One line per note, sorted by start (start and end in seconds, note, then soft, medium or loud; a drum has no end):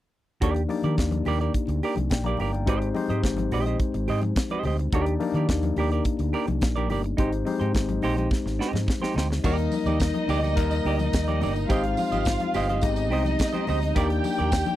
0.41 0.63 D#2 medium
0.41 0.60 A#3 medium
0.41 0.60 D4 medium
0.41 0.60 D#4 medium
0.41 0.62 G4 medium
0.41 0.60 G4 medium
0.41 0.56 A#4 medium
0.41 0.60 D5 medium
0.41 0.55 D5 medium
0.41 kick medium
0.41 closed hi-hat medium
0.55 muted clean electric guitar stroke soft
0.55 closed hi-hat soft
0.55 muted conga soft
0.68 1.41 A#3 medium
0.68 1.41 D4 medium
0.68 1.41 D#4 medium
0.68 1.41 G4 medium
0.68 1.41 D5 medium
0.68 muted clean electric guitar stroke soft
0.68 open hi-hat medium
0.68 high conga medium
0.83 1.00 D#3 loud
0.83 0.96 G4 soft
0.83 0.96 A#4 medium
0.83 0.95 D5 medium
0.83 closed hi-hat soft
0.83 high conga medium
0.97 1.19 D#2 medium
0.97 muted clean electric guitar stroke soft
0.97 kick medium
0.97 snare medium
0.97 closed hi-hat medium
0.97 muted conga soft
1.11 muted clean electric guitar stroke soft
1.11 closed hi-hat soft
1.11 muted conga soft
1.11 high conga medium
1.25 1.47 D#2 medium
1.25 1.41 G4 medium
1.25 1.40 A#4 medium
1.25 1.40 D5 loud
1.25 open hi-hat medium
1.25 low conga medium
1.41 1.53 G4 soft
1.41 1.52 A#4 soft
1.41 1.52 D5 medium
1.41 closed hi-hat soft
1.54 kick medium
1.54 closed hi-hat medium
1.67 1.79 D2 medium
1.67 muted clean electric guitar stroke soft
1.67 closed hi-hat soft
1.67 muted conga soft
1.83 1.97 G4 medium
1.83 1.97 A#4 medium
1.83 1.96 D5 medium
1.83 open hi-hat medium
1.96 2.11 C2 medium
1.96 closed hi-hat soft
1.96 high conga medium
2.10 2.32 A#1 medium
2.10 2.25 D5 soft
2.10 2.24 G5 medium
2.10 muted clean electric guitar stroke soft
2.10 kick loud
2.10 snare loud
2.10 closed hi-hat medium
2.10 muted conga soft
2.24 2.40 A#4 medium
2.24 2.40 D5 medium
2.24 2.52 F5 medium
2.24 2.51 A#5 medium
2.24 closed hi-hat soft
2.24 muted conga soft
2.24 high conga medium
2.28 2.39 G4 medium
2.37 2.68 G1 medium
2.37 2.51 G4 medium
2.37 2.51 A#4 medium
2.37 open hi-hat soft
2.37 low conga medium
2.42 2.52 D5 medium
2.52 2.80 D5 soft
2.52 2.79 G5 medium
2.52 muted clean electric guitar stroke soft
2.52 closed hi-hat soft
2.66 2.88 G#1 loud
2.66 2.84 G#3 medium
2.66 2.85 C4 medium
2.66 2.85 D#4 medium
2.66 2.85 G4 medium
2.66 2.87 G4 medium
2.66 2.85 C5 medium
2.66 2.81 C5 medium
2.66 2.80 D#5 medium
2.66 kick loud
2.66 closed hi-hat medium
2.81 muted clean electric guitar stroke soft
2.81 closed hi-hat soft
2.94 3.66 G#3 medium
2.94 3.67 C4 medium
2.94 3.67 D#4 medium
2.94 3.67 G4 medium
2.94 3.67 C5 medium
2.94 muted clean electric guitar stroke soft
2.94 open hi-hat medium
2.94 high conga medium
3.09 3.20 G#2 medium
3.09 3.22 G4 soft
3.09 3.21 C5 medium
3.09 3.21 D#5 medium
3.09 closed hi-hat soft
3.09 high conga medium
3.24 3.45 G#1 medium
3.24 muted clean electric guitar stroke soft
3.24 kick loud
3.24 snare medium
3.24 closed hi-hat medium
3.37 muted clean electric guitar stroke soft
3.37 closed hi-hat soft
3.37 muted conga soft
3.37 high conga medium
3.52 3.73 A#1 medium
3.52 3.67 G4 medium
3.52 3.66 C5 medium
3.52 3.65 D#5 medium
3.52 open hi-hat medium
3.52 low conga medium
3.66 3.78 G4 soft
3.66 3.78 C5 soft
3.66 3.77 D#5 medium
3.66 closed hi-hat soft
3.80 kick loud
3.80 closed hi-hat medium
3.80 muted conga soft
3.94 4.10 G#1 medium
3.94 muted clean electric guitar stroke soft
3.94 closed hi-hat soft
4.08 4.29 G#2 medium
4.08 4.22 G4 medium
4.08 4.23 C5 medium
4.08 4.22 D#5 medium
4.08 open hi-hat medium
4.22 muted clean electric guitar stroke medium
4.22 closed hi-hat soft
4.22 high conga medium
4.36 muted clean electric guitar stroke soft
4.36 kick loud
4.36 snare loud
4.36 closed hi-hat medium
4.50 4.64 G4 medium
4.50 4.65 C5 medium
4.50 4.66 D#5 medium
4.50 closed hi-hat soft
4.50 high conga medium
4.63 4.86 D2 medium
4.63 4.76 G4 soft
4.63 4.76 C5 medium
4.63 4.77 D#5 medium
4.63 open hi-hat medium
4.63 low conga medium
4.79 muted clean electric guitar stroke soft
4.79 closed hi-hat soft
4.92 5.14 D#2 loud
4.92 5.10 A#3 medium
4.92 5.11 D4 medium
4.92 5.11 D#4 medium
4.92 5.13 G4 medium
4.92 5.11 G4 medium
4.92 5.07 A#4 medium
4.92 5.11 D5 medium
4.92 5.06 D5 medium
4.92 kick loud
4.92 closed hi-hat medium
4.92 muted conga soft
5.06 muted clean electric guitar stroke soft
5.06 closed hi-hat soft
5.06 muted conga soft
5.20 5.92 A#3 medium
5.20 5.92 D4 medium
5.20 5.92 D#4 medium
5.20 5.93 G4 medium
5.20 5.93 D5 medium
5.20 muted clean electric guitar stroke soft
5.20 open hi-hat medium
5.20 high conga medium
5.34 5.45 D#3 medium
5.34 5.47 G4 medium
5.34 5.47 A#4 medium
5.34 5.46 D5 medium
5.34 closed hi-hat soft
5.34 high conga medium
5.49 5.70 D#2 medium
5.49 muted clean electric guitar stroke soft
5.49 kick loud
5.49 snare loud
5.49 closed hi-hat medium
5.63 muted clean electric guitar stroke soft
5.63 closed hi-hat soft
5.63 high conga medium
5.76 5.98 D#2 medium
5.76 5.92 G4 medium
5.76 5.91 A#4 medium
5.76 5.91 D5 medium
5.76 open hi-hat medium
5.76 low conga medium
5.92 6.04 G4 soft
5.92 6.03 A#4 medium
5.92 6.03 D5 medium
5.92 closed hi-hat soft
6.05 kick loud
6.05 closed hi-hat medium
6.05 muted conga soft
6.19 6.30 D2 medium
6.19 muted clean electric guitar stroke soft
6.19 closed hi-hat soft
6.19 muted conga soft
6.33 6.48 G4 medium
6.33 6.48 A#4 medium
6.33 6.47 D5 medium
6.33 open hi-hat soft
6.47 6.58 C2 medium
6.47 muted clean electric guitar stroke soft
6.47 closed hi-hat soft
6.47 high conga medium
6.61 6.90 A#1 medium
6.61 muted clean electric guitar stroke soft
6.61 kick loud
6.61 snare loud
6.61 closed hi-hat medium
6.61 muted conga soft
6.76 6.89 G4 medium
6.76 6.90 A#4 medium
6.76 6.90 D5 medium
6.76 closed hi-hat soft
6.76 muted conga soft
6.76 high conga medium
6.90 7.11 G1 medium
6.90 7.01 G4 medium
6.90 7.02 A#4 medium
6.90 7.02 D5 medium
6.90 open hi-hat medium
6.90 low conga medium
7.04 muted clean electric guitar stroke soft
7.04 closed hi-hat soft
7.17 7.40 G#1 loud
7.17 7.36 G#3 medium
7.17 7.36 C4 medium
7.17 7.32 D#4 medium
7.17 7.36 D#4 medium
7.17 7.33 G4 medium
7.17 7.36 G4 medium
7.17 7.37 C5 medium
7.17 7.31 C5 medium
7.17 kick loud
7.17 closed hi-hat medium
7.17 muted conga soft
7.17 low conga medium
7.32 muted clean electric guitar stroke soft
7.32 closed hi-hat soft
7.45 8.18 G#3 medium
7.45 8.18 C4 medium
7.45 8.18 D#4 medium
7.45 8.19 G4 medium
7.45 8.19 C5 medium
7.45 muted clean electric guitar stroke medium
7.45 open hi-hat medium
7.45 high conga medium
7.60 7.71 G#2 medium
7.60 7.72 D#4 soft
7.60 7.72 G4 medium
7.60 7.71 C5 medium
7.60 closed hi-hat soft
7.60 high conga medium
7.74 7.96 G#1 medium
7.74 muted clean electric guitar stroke soft
7.74 kick loud
7.74 snare medium
7.74 closed hi-hat medium
7.89 muted clean electric guitar stroke soft
7.89 closed hi-hat soft
7.89 high conga medium
8.02 8.25 A#1 medium
8.02 8.17 D#4 medium
8.02 8.17 G4 medium
8.02 8.15 C5 medium
8.02 open hi-hat medium
8.02 low conga medium
8.17 8.29 D#4 medium
8.17 8.29 G4 medium
8.17 8.28 C5 medium
8.17 closed hi-hat soft
8.17 high conga medium
8.31 kick loud
8.31 snare medium
8.46 8.56 G#1 medium
8.46 muted clean electric guitar stroke soft
8.46 snare soft
8.59 8.79 D#4 medium
8.59 8.73 G4 medium
8.59 8.72 C5 medium
8.59 snare medium
8.73 8.84 G#2 medium
8.73 muted clean electric guitar stroke soft
8.73 snare medium
8.73 high conga medium
8.86 muted clean electric guitar stroke soft
8.86 kick loud
8.86 snare medium
8.86 muted conga soft
9.00 9.15 D#4 medium
9.00 9.16 G4 medium
9.00 9.16 C5 medium
9.00 snare medium
9.00 high conga medium
9.14 9.37 D2 medium
9.14 9.27 D#4 medium
9.14 9.28 G4 medium
9.14 9.28 C5 medium
9.14 snare medium
9.14 low conga medium
9.30 muted clean electric guitar stroke medium
9.30 snare medium
9.43 9.65 D#2 medium
9.43 10.16 G3 medium
9.43 10.16 A#3 medium
9.43 11.66 D#4 medium
9.43 9.64 D#4 medium
9.43 10.16 D#4 medium
9.43 9.58 G4 medium
9.43 10.16 A#4 medium
9.43 9.57 D5 medium
9.43 11.66 D#5 medium
9.43 kick loud
9.43 crash medium
9.43 tambourine medium
9.43 muted conga soft
9.58 muted clean electric guitar stroke soft
9.58 closed hi-hat soft
9.71 muted clean electric guitar stroke soft
9.71 open hi-hat medium
9.71 tambourine medium
9.71 high conga medium
9.86 10.07 D#2 medium
9.86 9.99 D#4 medium
9.86 9.98 G4 medium
9.86 9.98 D5 medium
9.86 closed hi-hat soft
9.86 tambourine soft
9.86 high conga medium
10.00 kick loud
10.00 snare loud
10.00 closed hi-hat medium
10.00 tambourine medium
10.14 muted clean electric guitar stroke soft
10.14 closed hi-hat soft
10.14 muted conga soft
10.14 high conga medium
10.28 10.57 D2 medium
10.28 10.43 D#4 medium
10.28 10.42 G4 medium
10.28 10.41 D5 medium
10.28 open hi-hat medium
10.28 tambourine medium
10.28 low conga medium
10.43 10.55 D#4 medium
10.43 10.54 D5 medium
10.43 closed hi-hat soft
10.43 tambourine soft
10.43 high conga medium
10.55 10.78 D#2 medium
10.55 11.28 G3 medium
10.55 11.28 A#3 medium
10.55 11.28 D#4 medium
10.55 11.29 A#4 medium
10.55 kick loud
10.55 closed hi-hat medium
10.55 tambourine medium
10.71 muted clean electric guitar stroke soft
10.71 closed hi-hat soft
10.71 tambourine medium
10.71 muted conga soft
10.85 11.06 D2 medium
10.85 11.00 D#4 medium
10.85 11.00 G4 medium
10.85 10.99 D5 medium
10.85 open hi-hat medium
10.99 muted clean electric guitar stroke soft
10.99 closed hi-hat medium
10.99 tambourine soft
10.99 high conga medium
11.13 11.44 D#2 medium
11.13 muted clean electric guitar stroke soft
11.13 kick loud
11.13 snare loud
11.13 closed hi-hat medium
11.13 tambourine medium
11.13 muted conga soft
11.27 11.40 D#4 medium
11.27 11.41 G4 medium
11.27 11.42 D5 medium
11.27 closed hi-hat soft
11.27 high conga medium
11.41 11.63 G1 medium
11.41 11.53 D#4 medium
11.41 11.53 G4 medium
11.41 11.54 D5 medium
11.41 open hi-hat medium
11.41 tambourine soft
11.41 low conga medium
11.56 muted clean electric guitar stroke soft
11.56 closed hi-hat soft
11.56 tambourine soft
11.69 11.91 G#1 loud
11.69 12.41 G#3 medium
11.69 12.41 C4 medium
11.69 12.41 D#4 medium
11.69 12.80 F4 medium
11.69 11.84 G4 medium
11.69 12.42 G4 medium
11.69 12.42 C5 medium
11.69 11.85 C5 medium
11.69 11.84 D#5 medium
11.69 12.81 F5 medium
11.69 kick loud
11.69 closed hi-hat medium
11.69 tambourine medium
11.69 muted conga soft
11.84 muted clean electric guitar stroke soft
11.84 closed hi-hat soft
11.84 muted conga soft
11.97 muted clean electric guitar stroke medium
11.97 open hi-hat medium
11.97 tambourine medium
11.97 high conga medium
12.12 12.33 G#1 medium
12.12 12.24 G4 medium
12.12 12.24 C5 medium
12.12 12.23 D#5 medium
12.12 closed hi-hat soft
12.12 tambourine soft
12.12 high conga medium
12.25 muted clean electric guitar stroke soft
12.25 kick loud
12.25 snare loud
12.25 closed hi-hat medium
12.25 tambourine loud
12.40 muted clean electric guitar stroke soft
12.40 closed hi-hat soft
12.40 high conga medium
12.54 12.83 G1 medium
12.54 12.69 G4 medium
12.54 12.69 C5 medium
12.54 12.68 D#5 medium
12.54 open hi-hat medium
12.54 tambourine soft
12.54 low conga medium
12.69 12.81 G4 soft
12.69 12.81 C5 medium
12.69 12.80 D#5 medium
12.69 closed hi-hat soft
12.69 high conga medium
12.81 13.12 G#1 medium
12.81 13.54 G#3 medium
12.81 12.89 B3 medium
12.81 13.94 D#4 medium
12.81 13.55 D#4 medium
12.81 13.55 G4 medium
12.81 13.94 D#5 medium
12.81 13.55 D#5 medium
12.81 kick loud
12.81 closed hi-hat medium
12.81 tambourine medium
12.81 muted conga soft
12.89 13.58 C4 medium
12.96 muted clean electric guitar stroke soft
12.96 closed hi-hat soft
12.96 tambourine medium
13.11 13.33 C2 medium
13.11 13.26 G4 medium
13.11 13.25 C5 medium
13.11 13.24 D#5 medium
13.11 open hi-hat medium
13.25 muted clean electric guitar stroke soft
13.25 closed hi-hat soft
13.25 tambourine soft
13.25 high conga medium
13.39 muted clean electric guitar stroke soft
13.39 kick loud
13.39 snare loud
13.39 closed hi-hat medium
13.39 tambourine medium
13.39 muted conga soft
13.53 13.67 G4 medium
13.53 13.67 C5 medium
13.53 13.68 D#5 medium
13.53 closed hi-hat soft
13.53 muted conga soft
13.53 high conga medium
13.67 13.90 D2 medium
13.67 13.79 G4 medium
13.67 13.80 C5 medium
13.67 13.80 D#5 medium
13.67 open hi-hat medium
13.67 tambourine soft
13.67 low conga medium
13.82 closed hi-hat soft
13.82 tambourine soft
13.95 14.17 D#2 loud
13.95 14.68 A#3 medium
13.95 14.68 D4 medium
13.95 14.68 D#4 medium
13.95 14.76 G4 medium
13.95 14.10 G4 medium
13.95 14.68 G4 medium
13.95 14.11 A#4 medium
13.95 14.68 D5 loud
13.95 14.09 D5 loud
13.95 14.76 G5 medium
13.95 kick loud
13.95 closed hi-hat medium
13.95 tambourine medium
13.95 muted conga soft
14.10 muted clean electric guitar stroke soft
14.10 closed hi-hat soft
14.10 muted conga soft
14.24 muted clean electric guitar stroke soft
14.24 open hi-hat medium
14.24 tambourine medium
14.24 high conga medium
14.39 14.60 D#2 medium
14.39 14.51 G4 medium
14.39 14.50 A#4 medium
14.39 14.50 D5 medium
14.39 closed hi-hat soft
14.39 high conga medium
14.52 muted clean electric guitar stroke soft
14.52 kick loud
14.52 snare loud
14.52 closed hi-hat medium
14.52 tambourine medium
14.66 muted clean electric guitar stroke soft
14.66 closed hi-hat soft
14.66 muted conga soft
14.66 high conga medium